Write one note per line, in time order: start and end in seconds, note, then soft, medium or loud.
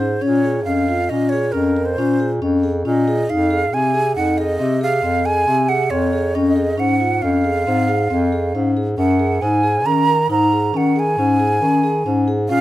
0.00 0.18 G#2 medium
0.00 0.11 G#4 medium
0.00 0.23 C5 medium
0.21 0.69 A#2 medium
0.21 0.33 C#4 medium
0.21 0.64 C#5 medium
0.45 0.56 G#4 medium
0.65 1.06 F2 medium
0.65 0.77 C#4 medium
0.65 1.11 F5 medium
0.89 1.00 F4 medium
1.09 1.50 A#2 medium
1.09 1.21 C#4 medium
1.09 1.31 D#5 medium
1.29 1.44 G#4 medium
1.29 1.54 C#5 medium
1.52 1.94 F2 medium
1.52 1.65 C#4 medium
1.52 1.87 A#4 medium
1.77 1.88 A#4 medium
1.85 2.30 C5 medium
1.98 2.37 A#2 medium
1.98 2.09 C#4 medium
2.20 2.31 G#4 medium
2.42 2.81 F2 medium
2.42 2.53 C#4 medium
2.63 2.75 G#4 medium
2.85 3.25 A#2 medium
2.85 2.96 C#4 medium
2.85 3.31 D#5 medium
3.08 3.19 G#4 medium
3.29 3.75 F2 medium
3.29 3.40 D#4 medium
3.29 3.75 F5 medium
3.51 3.62 G#4 medium
3.73 4.12 C3 medium
3.73 3.84 C4 medium
3.73 4.15 G#5 medium
3.94 4.05 G#4 medium
4.16 4.56 F2 medium
4.16 4.28 D#4 medium
4.16 4.39 F#5 medium
4.38 4.49 G#4 medium
4.38 4.82 D#5 medium
4.59 4.99 C3 medium
4.59 4.71 C4 medium
4.81 4.93 G#4 medium
4.81 5.27 F5 medium
5.03 5.43 F2 medium
5.03 5.14 C4 medium
5.25 5.37 G#4 medium
5.25 5.70 G#5 medium
5.47 5.87 C3 medium
5.47 5.59 C4 medium
5.69 5.80 G#4 medium
5.69 5.92 F#5 medium
5.90 6.31 F2 medium
5.90 6.02 C4 medium
5.90 6.36 C#5 medium
6.13 6.24 G#4 medium
6.35 6.81 F2 medium
6.35 6.46 C#4 medium
6.35 6.81 D#5 medium
6.56 6.67 G#4 medium
6.78 7.19 G#2 medium
6.78 6.89 C#4 medium
6.78 7.23 F#5 medium
7.00 7.12 F4 medium
7.22 7.62 F2 medium
7.22 7.33 C#4 medium
7.22 8.71 F5 medium
7.45 7.56 G#4 medium
7.67 8.06 G#2 medium
7.67 7.78 C4 medium
7.88 7.99 G#4 medium
8.10 8.50 F2 medium
8.10 8.21 C4 medium
8.32 8.43 G#4 medium
8.54 8.94 G#2 medium
8.54 8.66 C#4 medium
8.77 8.88 G#4 medium
8.98 9.37 F#2 medium
8.98 9.09 C#4 medium
8.98 9.43 F#5 medium
9.19 9.31 G#4 medium
9.41 9.87 G#2 medium
9.41 9.53 D#4 medium
9.41 9.87 G#5 medium
9.63 9.75 G#4 medium
9.85 10.25 D#3 medium
9.85 9.97 C#4 medium
9.85 10.30 A#5 medium
10.07 10.19 A#4 medium
10.30 10.69 G#2 medium
10.30 10.41 D#4 medium
10.30 10.78 A#5 medium
10.52 10.63 G#4 medium
10.73 11.13 D#3 medium
10.73 10.85 C#4 medium
10.73 11.01 F#5 medium
10.96 11.07 G#4 medium
10.96 12.29 G#5 medium
11.18 11.57 G#2 medium
11.18 11.30 C#4 medium
11.39 11.51 G#4 medium
11.61 12.01 D#3 medium
11.61 11.73 C#4 medium
11.84 11.95 G#4 medium
12.06 12.45 G#2 medium
12.06 12.17 C#4 medium
12.28 12.39 G#4 medium
12.49 12.61 A#2 medium
12.49 12.61 C#4 medium
12.49 12.61 F5 medium